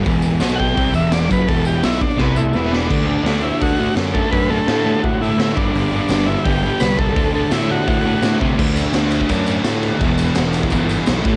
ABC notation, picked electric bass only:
X:1
M:4/4
L:1/8
Q:1/4=169
K:Dmix
V:1 name="Picked electric bass" clef=bass
E,,,2 B,,,2 C,, E,,,2 F,,, | E,,,2 B,,, z C,,2 E,,,2 | D,,2 D,,2 D,,2 F,,2 | F,,2 A,,2 A,,2 A,, G,,, |
G,,,2 G,,,2 G,,,2 C,,2 | D,,2 A,,2 A,,2 A,, C, | D,,2 D,,2 F,,2 A,,2 | E,,,2 E,,,2 G,,,2 B,,, A,,, |]